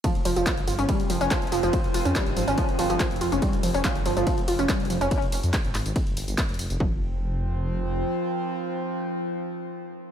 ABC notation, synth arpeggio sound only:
X:1
M:4/4
L:1/16
Q:1/4=142
K:Cphr
V:1 name="Synth arpeggio sound" clef=bass
F, z F, F, F, z F D G, z F, D F, z F, F, | F, z F D G, z F, D F, z F, F, F, z F D | G, z F, D F, z F, F, F, z F D G, z F, D | z16 |
F,2 z12 z2 | z16 |]